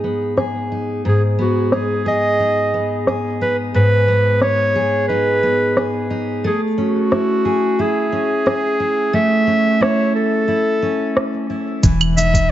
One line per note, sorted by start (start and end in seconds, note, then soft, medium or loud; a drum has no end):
0.00 1.04 G#2 medium
0.00 1.38 B3 soft
0.00 0.71 D#4 medium
0.00 0.37 G#4 medium
0.04 shaker medium
0.21 shaker soft
0.37 2.06 G#4 medium
0.37 cross-stick medium
0.37 shaker soft
0.71 1.72 D#4 soft
0.71 shaker medium
0.88 shaker soft
1.05 3.73 G#2 medium
1.05 1.22 G#4 medium
1.39 2.73 B3 medium
1.39 1.75 F#4 medium
1.39 shaker medium
1.56 shaker soft
1.72 2.38 D#4 medium
1.72 2.06 G#4 medium
1.72 cross-stick medium
2.06 3.07 G#4 medium
2.06 3.04 D#5 medium
2.40 3.40 D#4 medium
2.74 4.07 B3 soft
2.74 shaker medium
2.90 shaker soft
3.07 4.75 G#4 medium
3.07 cross-stick medium
3.07 shaker soft
3.24 shaker soft
3.41 4.41 D#4 medium
3.41 3.57 B4 medium
3.41 shaker medium
3.74 6.44 G#2 medium
3.74 4.38 B4 loud
4.08 5.42 B3 medium
4.08 shaker medium
4.41 5.08 D#4 medium
4.41 5.05 C#5 loud
4.41 cross-stick medium
4.41 shaker soft
4.75 5.77 G#4 medium
4.75 shaker medium
5.08 6.09 D#4 medium
5.08 6.06 B4 medium
5.43 6.51 B3 medium
5.43 shaker medium
5.61 shaker soft
5.77 7.45 G#4 medium
5.77 cross-stick medium
5.77 shaker soft
6.03 shaker soft
6.10 6.51 D#4 medium
6.10 shaker medium
6.28 shaker soft
6.44 9.12 A3 medium
6.44 6.61 G#4 medium
6.78 8.11 C#4 medium
6.78 7.82 F#4 medium
6.78 shaker medium
6.96 shaker soft
7.12 7.79 E4 medium
7.12 cross-stick medium
7.12 shaker soft
7.45 8.46 G#4 medium
7.45 shaker medium
7.63 shaker soft
7.79 8.79 E4 medium
7.79 9.16 G#4 medium
8.12 9.46 C#4 medium
8.12 shaker medium
8.30 shaker soft
8.46 11.96 G#4 medium
8.46 cross-stick medium
8.46 shaker soft
8.80 9.80 E4 medium
8.80 shaker medium
8.97 shaker soft
9.13 11.83 A3 medium
9.13 9.84 E5 loud
9.13 shaker soft
9.32 shaker soft
9.47 10.81 C#4 medium
9.47 shaker medium
9.66 shaker soft
9.80 10.48 E4 medium
9.80 10.14 C#5 medium
9.80 cross-stick medium
9.80 shaker soft
9.99 shaker soft
10.15 11.46 A4 medium
10.15 shaker medium
10.33 shaker soft
10.48 11.49 E4 medium
10.48 shaker soft
10.82 11.90 C#4 medium
11.00 shaker soft
11.17 cross-stick medium
11.17 shaker soft
11.33 shaker soft
11.50 12.17 E4 medium
11.50 shaker medium
11.67 shaker soft
11.83 12.52 E1 loud
11.83 12.52 E3 medium
11.83 kick loud
11.83 closed hi-hat medium
11.83 shaker soft
12.01 closed hi-hat soft
12.01 claves medium
12.17 12.52 D#4 medium
12.17 12.52 E5 loud
12.17 shaker medium
12.34 kick medium
12.34 closed hi-hat soft
12.34 shaker soft